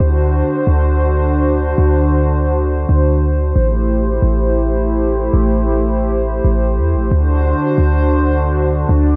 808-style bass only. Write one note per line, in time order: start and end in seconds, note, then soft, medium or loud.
0.00 0.43 D2 loud
0.67 1.74 D2 loud
1.78 2.85 D2 loud
2.89 3.53 D2 loud
3.56 4.20 A1 loud
4.22 5.30 A1 loud
5.34 6.41 A1 loud
6.44 6.80 A1 loud
6.78 6.96 E2 loud
6.95 7.11 A1 loud
7.11 7.54 D2 loud
7.78 8.85 D2 loud
8.89 9.16 D2 loud